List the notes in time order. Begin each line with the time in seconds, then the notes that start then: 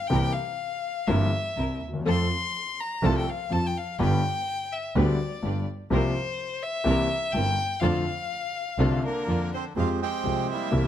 0.07 C2 C3 E3 A#3 C4 G4 G5
0.11 C2 C4 E4 A#4
0.33 F5
1.07 G1 G2 E3 A#3 C4 E4 G4 A#4 E5
1.57 C2 C3 C4 E4 A#4
1.82 D#2
1.88 D2
1.93 D#2
2.00 E2
2.05 F2 F3 A3 C4 F4 A4
2.09 C6
2.80 A#5
3.02 C2 C3 F3 A3 C4 F4 A4 A5
3.18 G5
3.30 F5
3.50 F2 F3 C4 F4 A4 A5
3.66 G5
3.78 F5
3.99 G1 G2 D3 G3 B3 D4 G4 B4 G5
4.73 E5
4.95 D2 D3 G3 B3 D4 G4 B4 D5
5.42 G1 G2 D4 G4 B4
5.90 C2 C3 F3 A#3 C4 F4 G4 A#4 C5
6.63 E5
6.84 C2 C3 E3 A#3 C4 E4 G4 A#4
7.32 G1 G2 C4 E4 A#4 G5
7.80 F2 D3 F3 A3 C4 D4 F4 A4 F5
8.78 C2 C3 D3 A3 C4 D4 F4 A4
9.04 D3 A#3 A#4
9.27 F2 F3 D4 F4 A4
9.54 C4 C5
9.76 F2 F3 G#3 C4 F4 G4 F5
10.02 C4 G4 G5
10.24 C2 C3 F3 G#3 C4 G4
10.51 G3 A#3 E4 E5
10.71 C2 C3 E3 A#3 C4 G4